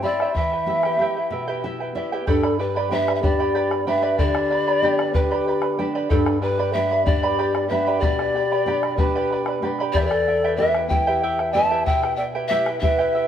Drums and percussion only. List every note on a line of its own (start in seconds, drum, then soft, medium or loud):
0.04 bombo rim soft
0.20 bombo rim medium
0.36 bombo low medium
0.51 bombo rim soft
0.67 bombo rim soft
0.83 bombo rim medium
1.00 bombo rim soft
2.28 bombo low medium
2.43 bombo rim medium
2.60 bombo rim soft
3.08 bombo rim medium
3.24 bombo low medium
3.40 bombo rim soft
3.71 bombo rim medium
4.19 bombo low medium
4.35 bombo rim medium
4.51 bombo rim soft
4.99 bombo rim medium
5.15 bombo low medium
5.31 bombo rim soft
5.62 bombo rim medium
6.11 bombo low medium
6.26 bombo rim medium
6.43 bombo rim soft
7.07 bombo low medium
7.23 bombo rim soft
7.55 bombo rim medium
8.02 bombo rim soft
8.02 bombo low medium
8.19 bombo rim medium
8.35 bombo rim soft
8.83 bombo rim medium
8.98 bombo rim soft
8.98 bombo low medium
9.30 bombo rim soft
9.46 bombo rim medium
9.63 bombo rim soft
9.79 bombo rim soft
9.95 bombo low medium
10.11 bombo rim medium
10.27 bombo rim soft
10.75 bombo rim medium
10.91 bombo low medium
11.07 bombo rim soft
11.39 bombo rim medium
11.87 bombo low medium
12.04 bombo rim medium
12.19 bombo rim soft
12.66 bombo rim medium
12.83 bombo low medium
12.99 bombo rim soft